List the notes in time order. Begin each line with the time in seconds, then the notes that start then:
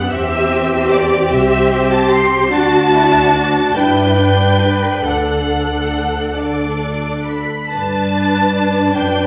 Already playing: F#2 F#5 F#6
0.10 E2 C4 G4 E5 E6
0.91 D5 D6
1.30 C2 C4 G4 E5 E6
1.91 A5 A6
2.10 C6 C7
2.51 D2 D4 F#4 A5 A6
2.94 E4
3.34 D4
3.75 G2 D4 E4 B4 G5 G6
4.19 D4
4.63 B4
5.06 D2 D4 A4 F#5 F#6
6.38 D4 A4 D5 D6
7.26 B5 B6
7.69 G2 D4 B4 A5 A6
8.95 F#2 D4 B4 G5 G6